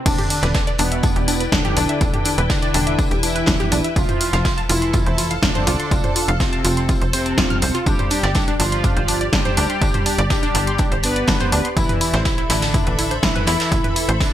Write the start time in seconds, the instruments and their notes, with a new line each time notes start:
0.06 analog synth bass E1, analog polysynth D3 D4, synth pluck D4, ambient pad E4 B4 D5 G5, kick, closed hi-hat, crash, tambourine
0.18 synth pluck G4, closed hi-hat, mid tom
0.30 synth pluck D4, open hi-hat, tambourine
0.42 analog synth bass E1, synth pluck B4, snare, closed hi-hat
0.54 synth pluck D4, kick, snare, closed hi-hat, tambourine
0.67 synth pluck D5, closed hi-hat
0.78 analog synth bass E1, analog polysynth B2 B3, synth pluck D4, open hi-hat, tambourine
0.92 synth pluck E5, closed hi-hat
1.03 synth pluck D4, kick, closed hi-hat, mid tom, tambourine
1.16 analog synth bass E1, synth pluck G4, closed hi-hat
1.28 synth pluck D4, open hi-hat, tambourine
1.40 synth pluck B4, closed hi-hat
1.52 analog synth bass E1, analog polysynth D3 D4, synth pluck D4, kick, snare, closed hi-hat, tambourine
1.65 synth pluck G4, closed hi-hat, mid tom
1.77 analog synth bass B1, synth pluck D4, open hi-hat, tambourine
1.89 synth pluck E5, closed hi-hat
2.01 analog synth bass E1, synth pluck D4, ambient pad E5, kick, closed hi-hat, tambourine
2.14 synth pluck G4, closed hi-hat, mid tom
2.25 synth pluck D4, open hi-hat, tambourine
2.38 analog synth bass E1, synth pluck B4, closed hi-hat
2.49 analog polysynth D3 D4, synth pluck D4, kick, snare, closed hi-hat, tambourine
2.62 synth pluck D5, closed hi-hat
2.74 analog synth bass E1, synth pluck D4, open hi-hat, tambourine
2.87 synth pluck E5, closed hi-hat
2.99 synth pluck D4, kick, closed hi-hat, tambourine
3.11 analog synth bass E1, synth pluck G4, closed hi-hat
3.23 analog polysynth E3 E4, synth pluck D4, open hi-hat, tambourine
3.36 synth pluck B4, closed hi-hat
3.46 analog synth bass E1, synth pluck D4, kick, snare, closed hi-hat, tambourine
3.60 synth pluck G4, closed hi-hat, mid tom
3.72 analog synth bass B1, synth pluck D4, open hi-hat, tambourine
3.84 synth pluck E5, closed hi-hat
3.96 analog synth bass F1, analog polysynth F3 F4, synth pluck F4, ambient pad A4 A5, kick, closed hi-hat, tambourine
4.09 synth pluck C5, closed hi-hat, mid tom
4.21 synth pluck F4, open hi-hat, tambourine
4.33 analog synth bass F1, synth pluck F5, snare, closed hi-hat
4.45 synth pluck F4, kick, snare, closed hi-hat, tambourine
4.57 synth pluck A5, closed hi-hat
4.69 analog synth bass F1, analog polysynth E3 E4, synth pluck F4, open hi-hat, tambourine
4.82 synth pluck C6, closed hi-hat
4.93 synth pluck F4, kick, closed hi-hat, mid tom, tambourine
5.06 analog synth bass F1, synth pluck C5, closed hi-hat
5.18 synth pluck F4, open hi-hat, tambourine
5.31 synth pluck F5, closed hi-hat
5.43 analog synth bass F1, analog polysynth D3 D4, synth pluck F4, kick, snare, closed hi-hat, tambourine
5.55 synth pluck C5, closed hi-hat, mid tom
5.67 analog synth bass C2, synth pluck F4, open hi-hat, tambourine
5.80 synth pluck C6, closed hi-hat
5.91 analog synth bass F1, synth pluck F4, kick, closed hi-hat, tambourine
6.04 synth pluck C5, closed hi-hat, mid tom
6.16 synth pluck F4, open hi-hat, tambourine
6.28 analog synth bass F1, synth pluck F5, closed hi-hat
6.40 analog polysynth C3 C4, synth pluck F4, kick, snare, open hi-hat, tambourine
6.52 synth pluck A5, closed hi-hat
6.65 analog synth bass F1, synth pluck F4, open hi-hat, tambourine
6.77 synth pluck C6, closed hi-hat
6.89 synth pluck F4, kick, closed hi-hat, tambourine
7.01 analog synth bass F1, synth pluck C5, closed hi-hat
7.13 analog polysynth C3 C4, synth pluck C5, open hi-hat, tambourine
7.26 synth pluck A5, closed hi-hat
7.38 analog synth bass F1, synth pluck F4, kick, snare, closed hi-hat, tambourine
7.50 synth pluck F6, closed hi-hat, mid tom
7.62 analog synth bass C2, synth pluck C5, open hi-hat, tambourine
7.75 synth pluck F4, closed hi-hat
7.86 analog synth bass G1, analog polysynth G3 G4, synth pluck D4, ambient pad G4 D5, kick, closed hi-hat, tambourine
7.99 synth pluck C5, closed hi-hat, mid tom
8.10 synth pluck D4, open hi-hat, tambourine
8.23 analog synth bass G1, synth pluck D5, snare, closed hi-hat
8.35 synth pluck D4, kick, snare, closed hi-hat, tambourine
8.48 synth pluck D4, closed hi-hat
8.60 analog synth bass G1, analog polysynth F3 F4, synth pluck D4, open hi-hat, tambourine
8.72 synth pluck C6, closed hi-hat
8.84 synth pluck D4, kick, closed hi-hat, mid tom, tambourine
8.97 analog synth bass G1, synth pluck C5, closed hi-hat
9.08 synth pluck D4, open hi-hat, tambourine
9.21 synth pluck D5, closed hi-hat
9.33 analog synth bass G1, analog polysynth G3 G4, synth pluck D4, kick, snare, closed hi-hat, tambourine
9.45 synth pluck C5, closed hi-hat, mid tom
9.57 analog synth bass D2, synth pluck D4, open hi-hat, tambourine
9.70 synth pluck C6, closed hi-hat
9.82 analog synth bass G1, synth pluck D4, kick, closed hi-hat, tambourine
9.94 synth pluck C5, closed hi-hat, mid tom
10.06 synth pluck D4, open hi-hat, tambourine
10.18 analog synth bass G1, synth pluck D5, closed hi-hat
10.30 analog polysynth G3 G4, synth pluck D4, kick, snare, closed hi-hat, tambourine
10.43 synth pluck D4, closed hi-hat
10.55 analog synth bass G1, synth pluck D4, open hi-hat, tambourine
10.67 synth pluck C6, closed hi-hat
10.78 synth pluck D4, kick, closed hi-hat, tambourine
10.91 analog synth bass G1, synth pluck C5, closed hi-hat
11.03 analog polysynth B3 B4, synth pluck D4, open hi-hat, tambourine
11.16 synth pluck D5, closed hi-hat
11.28 analog synth bass G1, synth pluck D4, kick, snare, closed hi-hat, tambourine
11.40 synth pluck C5, closed hi-hat, mid tom
11.52 analog synth bass D2, synth pluck D4, open hi-hat, tambourine
11.64 synth pluck C6, closed hi-hat
11.77 analog synth bass A1, analog polysynth E3 E4, synth pluck E4, ambient pad A4 E5 B5, kick, closed hi-hat, tambourine
11.89 synth pluck B4, closed hi-hat, mid tom
12.01 synth pluck E4, open hi-hat, tambourine
12.14 analog synth bass A1, synth pluck C5, snare, closed hi-hat
12.25 synth pluck E4, kick, snare, closed hi-hat, tambourine
12.38 synth pluck E4, closed hi-hat
12.50 analog synth bass A1, analog polysynth D3 D4, synth pluck E4, snare, open hi-hat, tambourine
12.62 synth pluck A5, snare, closed hi-hat, tambourine
12.74 synth pluck E4, kick, closed hi-hat, mid tom, tambourine
12.87 analog synth bass A1, synth pluck B4, closed hi-hat
12.99 synth pluck E4, open hi-hat, tambourine
13.11 synth pluck C5, closed hi-hat
13.23 analog synth bass A1, analog polysynth E3 E4, synth pluck E4, kick, snare, closed hi-hat, tambourine
13.35 synth pluck B4, closed hi-hat, mid tom
13.47 analog synth bass E2, synth pluck E4, snare, open hi-hat, tambourine
13.60 synth pluck A5, snare, closed hi-hat, tambourine
13.72 analog synth bass A1, synth pluck E4, kick, closed hi-hat, tambourine
13.84 synth pluck B4, closed hi-hat, mid tom
13.96 synth pluck E4, open hi-hat, tambourine
14.09 analog synth bass A1, synth pluck C5, closed hi-hat
14.20 analog polysynth D3 D4, synth pluck E4, kick, snare, open hi-hat, tambourine